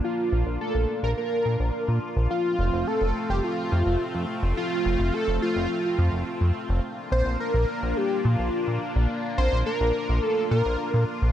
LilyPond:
<<
  \new Staff \with { instrumentName = "Analog synth lead" } { \time 4/4 \key bes \lydian \tempo 4 = 106 f'4 a'8. bes'16 bes'4. r8 | f'4 a'8. g'16 f'4. r8 | f'4 a'8 f'4. r4 | r8 c''8 bes'4 g'8 f'4 r8 |
r8 c''8 bes'4 a'8 bes'4 r8 | }
  \new Staff \with { instrumentName = "Analog synth pad" } { \time 4/4 \key bes \lydian << { f'1~ | f'1~ | f'1 | f'1~ |
f'1 | } \\ { <bes d'>1 | <a c'>1~ | <a c'>1 | <bes d'>1~ |
<bes d'>1 | } >> }
  \new Staff \with { instrumentName = "Analog synth bass" } { \clef bass \time 4/4 \key bes \lydian r8 bes,,16 bes,,16 r16 bes,,16 r16 bes,,16 r8 bes,16 bes,,16 r16 bes,16 r16 bes,,16 | r8 f,,16 f,,16 r16 f,,16 r16 f,,16 r8 f,16 f,,16 r16 f,16 r16 f,,16 | r8 f,,16 f,,16 r16 f,,16 r16 f,,16 r8 f,16 f,,16 r16 f,16 r16 f,,16 | r8 bes,,16 bes,,16 r16 bes,,16 r16 bes,,16 r8 bes,16 bes,,16 r16 bes,16 r16 bes,,16 |
r8 bes,,16 bes,,16 r16 bes,,16 r16 bes,,16 r8 bes,16 bes,,16 r16 bes,16 r16 bes,,16 | }
>>